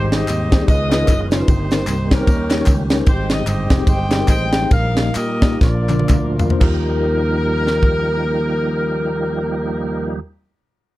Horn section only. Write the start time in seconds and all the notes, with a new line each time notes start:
Already playing: D#4 G4 C5
0.13 G4 C5 D#5
0.68 G#4 B4 D#5
1.32 D#4 C5
2.13 C#4 G4 A#4
3.08 D#4 G4 C5
3.31 D#5
3.47 G4 C5 D#5
3.88 C5 D#5 G5
4.28 C5 D#5 G5
4.71 A#4 F5
5.15 G4 A#4 D#5
5.61 F4 A#4 D5
6.60 A#4